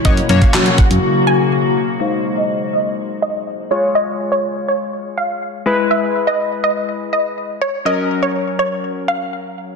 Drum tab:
HH |xxxxxxxx--------|----------------|----------------|----------------|
CP |----x-----------|----------------|----------------|----------------|
SD |----o-----------|----------------|----------------|----------------|
BD |o--o--o---------|----------------|----------------|----------------|

HH |----------------|
CP |----------------|
SD |----------------|
BD |----------------|